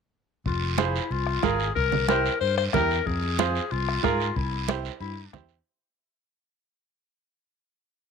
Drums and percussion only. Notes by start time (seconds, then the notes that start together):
0.46 bombo low, long guiro
0.63 high conga
0.78 bombo rim, high conga, short guiro
0.96 short guiro
1.11 high conga, long guiro
1.27 bombo rim
1.43 bombo low, bombo rim, high conga, short guiro
1.60 short guiro
1.76 bombo low, long guiro
1.92 high conga, low conga
2.08 bombo rim, high conga, short guiro
2.26 short guiro
2.42 high conga, long guiro
2.58 bombo rim
2.73 bombo low, bombo rim, high conga, low conga, short guiro
2.91 short guiro
3.06 bombo low, long guiro
3.22 high conga
3.39 bombo rim, high conga, short guiro
3.55 short guiro
3.71 high conga, long guiro
3.89 bombo rim
4.04 bombo low, bombo rim, high conga, short guiro
4.20 short guiro
4.36 bombo low, long guiro
4.52 high conga
4.68 bombo rim, high conga, short guiro
4.85 short guiro
5.01 high conga, long guiro
5.33 bombo low, bombo rim, high conga, low conga, short guiro
5.49 short guiro